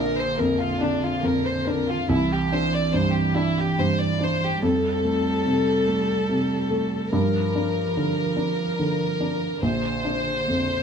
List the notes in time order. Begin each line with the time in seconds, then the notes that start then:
Already playing: A#1 D3 D4 A#4
0.18 C5
0.37 F2 A#4
0.60 F4
0.81 D4
1.04 F4
1.23 F2 A#4
1.46 C5
1.67 D4 A#4
1.90 F4
2.09 C2 E3 E4
2.33 G4
2.52 D4 C5
2.75 D5
2.94 G2 C5
3.15 G4
3.36 D4 E4
3.60 G4
3.79 G2 C5
4.00 D5
4.20 D4 C5
4.44 G4
4.63 F2 G3 A4
5.04 A3
5.46 C3
5.87 A3
6.29 C3
6.70 A3
7.13 G2 F3 A#4
7.55 D4
7.97 D3
8.36 D4
8.79 D3
9.20 D4
9.61 A#1 D3 C5
10.05 D4
10.48 F2